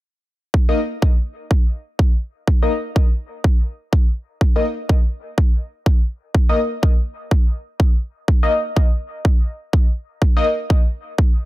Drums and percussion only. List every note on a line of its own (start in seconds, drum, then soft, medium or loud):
0.54 kick loud
1.02 kick loud
1.51 kick loud
1.99 kick loud
2.47 kick loud
2.96 kick loud
3.44 kick loud
3.93 kick loud
4.41 kick loud
4.89 kick loud
5.38 kick loud
5.86 kick loud
6.35 kick loud
6.83 kick loud
7.31 kick loud
7.80 kick loud
8.28 kick loud
8.77 kick loud
9.25 kick loud
9.73 kick loud
10.22 kick loud
10.70 kick loud
11.18 kick loud